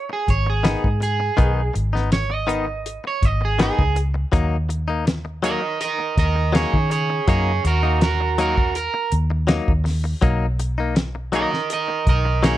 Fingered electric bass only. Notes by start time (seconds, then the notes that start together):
0.29 G#1
0.84 G#2
1.39 B1
1.75 G#1
3.23 G#1
3.79 C#2
4.33 D#2
6.18 D#2
6.74 D#3
7.28 F#2
7.64 D#2
9.12 D#2
9.68 D#2
10.22 B1
12.07 B1